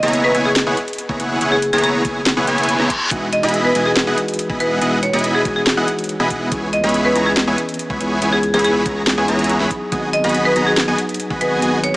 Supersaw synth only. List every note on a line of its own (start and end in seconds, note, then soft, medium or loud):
0.03 0.32 B3 medium
0.03 0.32 E4 medium
0.03 0.32 G#4 medium
0.03 0.32 C#5 medium
0.03 0.32 A#5 medium
0.35 0.51 B3 medium
0.35 0.51 E4 medium
0.35 0.51 G#4 medium
0.35 0.51 C#5 medium
0.35 0.51 G#5 loud
0.67 0.77 B3 medium
0.67 0.77 E4 medium
0.67 0.77 G#4 medium
0.67 0.77 C#5 medium
0.67 0.77 F#5 loud
1.09 1.18 B3 medium
1.09 1.18 E4 medium
1.09 1.18 G#4 medium
1.09 1.18 C#5 medium
1.09 1.18 A#5 loud
1.20 1.39 B3 medium
1.20 1.38 E4 medium
1.20 1.38 G#4 medium
1.20 1.39 C#5 medium
1.20 1.39 F#5 medium
1.41 1.57 B3 medium
1.41 1.57 E4 medium
1.41 1.57 G#4 medium
1.41 1.57 C#5 medium
1.41 1.57 F#5 loud
1.73 2.02 B3 medium
1.73 2.02 E4 medium
1.73 2.02 G#4 medium
1.73 2.02 C#5 medium
1.73 2.02 A#5 medium
2.05 2.21 B3 medium
2.05 2.21 E4 medium
2.05 2.21 G#4 medium
2.05 2.21 C#5 medium
2.05 2.21 G#5 loud
2.37 2.45 B3 medium
2.37 2.45 E4 medium
2.37 2.45 G#4 medium
2.37 2.45 C#5 medium
2.37 2.45 F#5 loud
2.47 2.77 B3 medium
2.47 2.77 E4 medium
2.47 2.77 G#4 medium
2.47 2.77 C#5 medium
2.47 2.77 G#5 medium
2.79 2.90 B3 medium
2.79 2.89 E4 medium
2.79 2.89 G#4 medium
2.79 2.89 C#5 medium
2.79 2.89 A#5 loud
3.11 3.28 B3 medium
3.11 3.28 E4 medium
3.11 3.28 G#4 medium
3.11 3.28 D#5 medium
3.11 3.28 F#5 loud
3.43 3.73 B3 medium
3.43 3.73 E4 medium
3.43 3.73 G#4 medium
3.43 3.73 D#5 medium
3.43 3.73 B5 medium
3.75 3.91 B3 medium
3.75 3.91 E4 medium
3.75 3.91 G#4 medium
3.75 3.91 D#5 medium
3.75 3.91 G#5 loud
4.07 4.17 B3 medium
4.07 4.17 E4 medium
4.07 4.17 G#4 medium
4.07 4.17 D#5 medium
4.07 4.17 F#5 loud
4.50 4.59 B3 medium
4.50 4.59 E4 medium
4.50 4.59 G#4 medium
4.50 4.59 D#5 medium
4.50 4.59 B5 loud
4.60 4.79 B3 medium
4.60 4.79 E4 medium
4.60 4.79 G#4 medium
4.60 4.79 D#5 medium
4.60 4.79 F#5 medium
4.81 4.98 B3 medium
4.81 4.98 E4 medium
4.81 4.98 G#4 medium
4.81 4.98 D#5 medium
4.81 4.98 F#5 loud
5.13 5.43 B3 medium
5.13 5.43 E4 medium
5.13 5.43 G#4 medium
5.13 5.43 D#5 medium
5.13 5.43 B5 medium
5.45 5.62 B3 medium
5.45 5.62 E4 medium
5.45 5.62 G#4 medium
5.45 5.62 G#5 loud
5.77 5.87 B3 medium
5.77 5.87 E4 medium
5.77 5.87 G#4 medium
5.77 5.87 D#5 medium
5.77 5.87 F#5 loud
6.20 6.29 B3 medium
6.20 6.29 E4 medium
6.20 6.29 G#4 medium
6.20 6.29 D#5 medium
6.20 6.29 B5 loud
6.30 6.49 B3 medium
6.30 6.49 F#5 loud
6.52 6.68 B3 medium
6.52 6.68 E4 medium
6.52 6.68 G#4 medium
6.52 6.68 C#5 medium
6.52 6.68 G#5 medium
6.84 7.13 B3 medium
6.84 7.13 E4 medium
6.84 7.13 G#4 medium
6.84 7.13 C#5 medium
6.84 7.13 B5 medium
7.16 7.32 B3 medium
7.16 7.32 E4 medium
7.16 7.32 G#4 medium
7.16 7.32 C#5 medium
7.16 7.32 A#5 loud
7.47 7.58 B3 medium
7.47 7.58 E4 medium
7.47 7.58 G#4 medium
7.47 7.58 C#5 medium
7.47 7.58 G#5 loud
7.90 7.99 B3 medium
7.90 7.99 E4 medium
7.90 7.99 G#4 medium
7.90 7.99 C#5 medium
7.90 7.99 B5 loud
8.01 8.19 B3 medium
8.01 8.19 E4 medium
8.01 8.19 G#4 medium
8.01 8.19 C#5 medium
8.01 8.19 G#5 medium
8.22 8.38 B3 medium
8.22 8.38 E4 medium
8.22 8.38 G#4 medium
8.22 8.38 C#5 medium
8.22 8.38 G#5 loud
8.54 8.83 B3 medium
8.54 8.83 E4 medium
8.54 8.83 G#4 medium
8.54 8.83 C#5 medium
8.54 8.83 B5 medium
8.86 9.02 B3 medium
8.86 9.02 E4 medium
8.86 9.02 C#5 medium
9.18 9.26 B3 medium
9.18 9.26 E4 medium
9.18 9.26 G#4 medium
9.18 9.26 C#5 medium
9.18 9.26 G#5 loud
9.28 9.58 B3 medium
9.28 9.58 E4 medium
9.28 9.58 G#4 medium
9.28 9.58 C#5 medium
9.28 9.58 A#5 medium
9.60 9.70 B3 medium
9.60 9.70 E4 medium
9.60 9.70 G#4 medium
9.60 9.70 C#5 medium
9.60 9.70 B5 loud
9.92 10.08 B3 medium
9.92 10.08 F#4 medium
9.92 10.08 G#4 medium
9.92 10.08 D#5 medium
9.92 10.08 G#5 loud
10.24 10.53 B3 medium
10.24 10.53 F#4 medium
10.24 10.53 G#4 medium
10.24 10.53 D#5 medium
10.24 10.53 B5 medium
10.56 10.72 B3 medium
10.56 10.72 F#4 medium
10.56 10.72 G#4 medium
10.56 10.72 D#5 medium
10.56 10.72 A#5 loud
10.88 10.98 B3 medium
10.88 10.98 F#4 medium
10.88 10.98 G#4 medium
10.88 10.98 D#5 medium
10.88 10.98 G#5 loud
11.30 11.39 B3 medium
11.30 11.39 F#4 medium
11.30 11.39 G#4 medium
11.30 11.39 D#5 medium
11.30 11.39 B5 loud
11.41 11.60 B3 medium
11.41 11.60 F#4 medium
11.41 11.60 G#4 medium
11.41 11.60 D#5 medium
11.41 11.60 G#5 loud
11.62 11.79 B3 medium
11.62 11.79 F#4 medium
11.62 11.79 G#4 medium
11.62 11.79 D#5 medium
11.62 11.79 G#5 loud